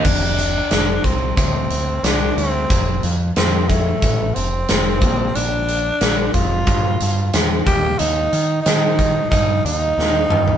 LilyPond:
<<
  \new Staff \with { instrumentName = "Tenor saxophone" } { \time 4/4 \key f \major \tempo 4 = 91 d'4. c'8 c'4 d'8 c'8~ | c'8 r8 c'8 a4 c'4. | d'4. f'4. r8 g'8 | ees'4 ees'4 ees'8 ees'4. | }
  \new Staff \with { instrumentName = "Picked electric bass" } { \clef bass \time 4/4 \key f \major f,,4 f,,8 c,8 d,8 d,8 c,8 d,8 | f,,8 f,8 f,4 a,,8 f,,8 f,,8 bes,,8 | bes,,4 bes,,8 f,,8 g,8 g,8 e,8 ees,8 | ees,8 ees8 ees4 g,8 ees,8 ees,8 g,8 | }
  \new DrumStaff \with { instrumentName = "Drums" } \drummode { \time 4/4 <cymc bd>8 hh8 <hh sn>8 <hh bd>8 <hh bd>8 hh8 <hh sn>8 hh8 | <hh bd>8 hh8 <hh sn>8 <hh bd>8 <hh bd>8 hh8 <hh sn>8 <hh bd>8 | hh8 hh8 <hh sn>8 <hh bd>8 <hh bd>8 hh8 <hh sn>8 <hh bd>8 | hh8 hh8 <hh sn>8 <hh bd>8 <hh bd>8 hh8 sn8 toml16 tomfh16 | }
>>